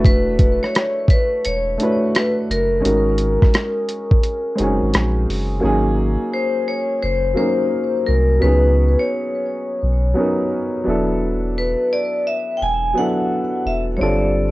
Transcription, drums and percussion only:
0, 0, Header, 1, 2, 480
1, 0, Start_track
1, 0, Tempo, 697674
1, 32, Time_signature, 4, 2, 24, 8
1, 9984, End_track
2, 0, Start_track
2, 0, Title_t, "Drums"
2, 32, Note_on_c, 9, 36, 108
2, 37, Note_on_c, 9, 42, 79
2, 100, Note_off_c, 9, 36, 0
2, 106, Note_off_c, 9, 42, 0
2, 269, Note_on_c, 9, 42, 61
2, 270, Note_on_c, 9, 36, 85
2, 338, Note_off_c, 9, 42, 0
2, 339, Note_off_c, 9, 36, 0
2, 442, Note_on_c, 9, 37, 30
2, 510, Note_off_c, 9, 37, 0
2, 518, Note_on_c, 9, 42, 73
2, 525, Note_on_c, 9, 37, 116
2, 587, Note_off_c, 9, 42, 0
2, 594, Note_off_c, 9, 37, 0
2, 744, Note_on_c, 9, 36, 92
2, 756, Note_on_c, 9, 42, 67
2, 813, Note_off_c, 9, 36, 0
2, 825, Note_off_c, 9, 42, 0
2, 996, Note_on_c, 9, 42, 77
2, 1064, Note_off_c, 9, 42, 0
2, 1237, Note_on_c, 9, 42, 58
2, 1305, Note_off_c, 9, 42, 0
2, 1478, Note_on_c, 9, 42, 72
2, 1487, Note_on_c, 9, 37, 115
2, 1547, Note_off_c, 9, 42, 0
2, 1556, Note_off_c, 9, 37, 0
2, 1728, Note_on_c, 9, 42, 57
2, 1797, Note_off_c, 9, 42, 0
2, 1961, Note_on_c, 9, 42, 79
2, 2030, Note_off_c, 9, 42, 0
2, 2188, Note_on_c, 9, 42, 62
2, 2257, Note_off_c, 9, 42, 0
2, 2355, Note_on_c, 9, 36, 84
2, 2360, Note_on_c, 9, 37, 30
2, 2424, Note_off_c, 9, 36, 0
2, 2429, Note_off_c, 9, 37, 0
2, 2436, Note_on_c, 9, 42, 70
2, 2443, Note_on_c, 9, 37, 112
2, 2504, Note_off_c, 9, 42, 0
2, 2512, Note_off_c, 9, 37, 0
2, 2675, Note_on_c, 9, 42, 64
2, 2744, Note_off_c, 9, 42, 0
2, 2829, Note_on_c, 9, 36, 87
2, 2898, Note_off_c, 9, 36, 0
2, 2913, Note_on_c, 9, 42, 75
2, 2982, Note_off_c, 9, 42, 0
2, 3154, Note_on_c, 9, 42, 56
2, 3222, Note_off_c, 9, 42, 0
2, 3396, Note_on_c, 9, 42, 71
2, 3405, Note_on_c, 9, 37, 112
2, 3465, Note_off_c, 9, 42, 0
2, 3474, Note_off_c, 9, 37, 0
2, 3647, Note_on_c, 9, 46, 41
2, 3716, Note_off_c, 9, 46, 0
2, 9984, End_track
0, 0, End_of_file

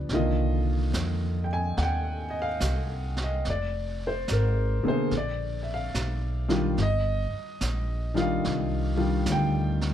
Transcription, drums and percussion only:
0, 0, Header, 1, 2, 480
1, 0, Start_track
1, 0, Key_signature, -3, "minor"
1, 0, Tempo, 832178
1, 57, Time_signature, 4, 2, 24, 8
1, 5732, End_track
2, 0, Start_track
2, 0, Title_t, "Drums"
2, 52, Note_on_c, 9, 25, 40
2, 52, Note_on_c, 9, 38, 33
2, 110, Note_off_c, 9, 38, 0
2, 539, Note_on_c, 9, 38, 46
2, 539, Note_on_c, 9, 44, 47
2, 597, Note_off_c, 9, 38, 0
2, 597, Note_off_c, 9, 44, 0
2, 1022, Note_off_c, 9, 25, 0
2, 1022, Note_on_c, 9, 25, 42
2, 1022, Note_on_c, 9, 38, 35
2, 1080, Note_off_c, 9, 38, 0
2, 1502, Note_on_c, 9, 38, 47
2, 1502, Note_on_c, 9, 44, 47
2, 1559, Note_off_c, 9, 38, 0
2, 1559, Note_off_c, 9, 44, 0
2, 1826, Note_on_c, 9, 38, 32
2, 1884, Note_off_c, 9, 38, 0
2, 1989, Note_off_c, 9, 25, 0
2, 1989, Note_on_c, 9, 25, 34
2, 1989, Note_on_c, 9, 38, 35
2, 2047, Note_off_c, 9, 38, 0
2, 2468, Note_on_c, 9, 38, 46
2, 2468, Note_on_c, 9, 44, 44
2, 2525, Note_off_c, 9, 38, 0
2, 2525, Note_off_c, 9, 44, 0
2, 2948, Note_off_c, 9, 25, 0
2, 2948, Note_on_c, 9, 25, 41
2, 2948, Note_on_c, 9, 38, 34
2, 3005, Note_off_c, 9, 38, 0
2, 3429, Note_on_c, 9, 38, 51
2, 3429, Note_on_c, 9, 44, 54
2, 3486, Note_off_c, 9, 38, 0
2, 3486, Note_off_c, 9, 44, 0
2, 3745, Note_on_c, 9, 38, 34
2, 3803, Note_off_c, 9, 38, 0
2, 3907, Note_off_c, 9, 25, 0
2, 3907, Note_on_c, 9, 25, 40
2, 3907, Note_on_c, 9, 38, 34
2, 3965, Note_off_c, 9, 38, 0
2, 4388, Note_on_c, 9, 38, 47
2, 4388, Note_on_c, 9, 44, 51
2, 4446, Note_off_c, 9, 38, 0
2, 4446, Note_off_c, 9, 44, 0
2, 4709, Note_on_c, 9, 38, 30
2, 4767, Note_off_c, 9, 38, 0
2, 4871, Note_off_c, 9, 25, 0
2, 4871, Note_on_c, 9, 25, 47
2, 4871, Note_on_c, 9, 38, 35
2, 4928, Note_off_c, 9, 38, 0
2, 5340, Note_on_c, 9, 38, 52
2, 5340, Note_on_c, 9, 44, 49
2, 5398, Note_off_c, 9, 38, 0
2, 5398, Note_off_c, 9, 44, 0
2, 5660, Note_on_c, 9, 38, 33
2, 5717, Note_off_c, 9, 38, 0
2, 5732, Note_off_c, 9, 25, 0
2, 5732, End_track
0, 0, End_of_file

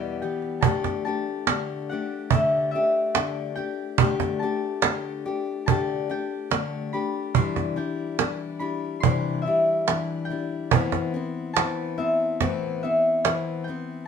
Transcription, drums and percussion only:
0, 0, Header, 1, 2, 480
1, 0, Start_track
1, 0, Tempo, 841515
1, 363, Time_signature, 4, 2, 24, 8
1, 8029, End_track
2, 0, Start_track
2, 0, Title_t, "Cajon"
2, 241, Note_on_c, 9, 38, 29
2, 298, Note_off_c, 9, 38, 0
2, 356, Note_on_c, 9, 36, 96
2, 414, Note_off_c, 9, 36, 0
2, 481, Note_on_c, 9, 36, 69
2, 481, Note_on_c, 9, 38, 27
2, 538, Note_off_c, 9, 36, 0
2, 538, Note_off_c, 9, 38, 0
2, 839, Note_on_c, 9, 38, 90
2, 896, Note_off_c, 9, 38, 0
2, 1315, Note_on_c, 9, 36, 93
2, 1372, Note_off_c, 9, 36, 0
2, 1560, Note_on_c, 9, 38, 29
2, 1617, Note_off_c, 9, 38, 0
2, 1796, Note_on_c, 9, 38, 92
2, 1853, Note_off_c, 9, 38, 0
2, 2036, Note_on_c, 9, 38, 29
2, 2093, Note_off_c, 9, 38, 0
2, 2271, Note_on_c, 9, 36, 110
2, 2328, Note_off_c, 9, 36, 0
2, 2394, Note_on_c, 9, 36, 83
2, 2394, Note_on_c, 9, 38, 31
2, 2451, Note_off_c, 9, 36, 0
2, 2451, Note_off_c, 9, 38, 0
2, 2751, Note_on_c, 9, 38, 104
2, 2808, Note_off_c, 9, 38, 0
2, 3239, Note_on_c, 9, 36, 91
2, 3296, Note_off_c, 9, 36, 0
2, 3481, Note_on_c, 9, 38, 27
2, 3538, Note_off_c, 9, 38, 0
2, 3716, Note_on_c, 9, 38, 82
2, 3773, Note_off_c, 9, 38, 0
2, 3955, Note_on_c, 9, 38, 26
2, 4012, Note_off_c, 9, 38, 0
2, 4191, Note_on_c, 9, 36, 95
2, 4248, Note_off_c, 9, 36, 0
2, 4313, Note_on_c, 9, 36, 70
2, 4313, Note_on_c, 9, 38, 27
2, 4370, Note_off_c, 9, 36, 0
2, 4370, Note_off_c, 9, 38, 0
2, 4671, Note_on_c, 9, 38, 89
2, 4728, Note_off_c, 9, 38, 0
2, 5153, Note_on_c, 9, 36, 93
2, 5210, Note_off_c, 9, 36, 0
2, 5634, Note_on_c, 9, 38, 85
2, 5691, Note_off_c, 9, 38, 0
2, 5873, Note_on_c, 9, 38, 28
2, 5930, Note_off_c, 9, 38, 0
2, 6111, Note_on_c, 9, 36, 101
2, 6168, Note_off_c, 9, 36, 0
2, 6231, Note_on_c, 9, 36, 78
2, 6231, Note_on_c, 9, 38, 28
2, 6288, Note_off_c, 9, 36, 0
2, 6288, Note_off_c, 9, 38, 0
2, 6356, Note_on_c, 9, 38, 26
2, 6413, Note_off_c, 9, 38, 0
2, 6597, Note_on_c, 9, 38, 96
2, 6654, Note_off_c, 9, 38, 0
2, 6837, Note_on_c, 9, 38, 27
2, 6894, Note_off_c, 9, 38, 0
2, 7076, Note_on_c, 9, 36, 91
2, 7076, Note_on_c, 9, 38, 28
2, 7133, Note_off_c, 9, 36, 0
2, 7133, Note_off_c, 9, 38, 0
2, 7203, Note_on_c, 9, 38, 28
2, 7260, Note_off_c, 9, 38, 0
2, 7320, Note_on_c, 9, 38, 29
2, 7377, Note_off_c, 9, 38, 0
2, 7557, Note_on_c, 9, 38, 81
2, 7614, Note_off_c, 9, 38, 0
2, 7800, Note_on_c, 9, 38, 27
2, 7857, Note_off_c, 9, 38, 0
2, 8029, End_track
0, 0, End_of_file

